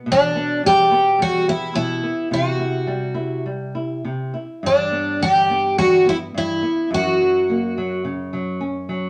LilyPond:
<<
  \new Staff \with { instrumentName = "Twelve-string acoustic guitar" } { \time 4/4 \key g \major \tempo 4 = 106 d'4 g'4 fis'8 e'8 e'4 | fis'2 r2 | d'4 g'4 fis'8 e'8 e'4 | fis'2 r2 | }
  \new Staff \with { instrumentName = "Nylon-string guitar" } { \clef bass \time 4/4 \key g \major b,8 b8 g8 b8 g8 b8 b,8 b8 | c8 e'8 g8 e'8 g8 e'8 c8 e'8 | g,8 b8 d8 b8 d8 b8 g,8 b8 | fis,8 fis8 ais8 fis8 cis8 fis8 cis'8 fis8 | }
>>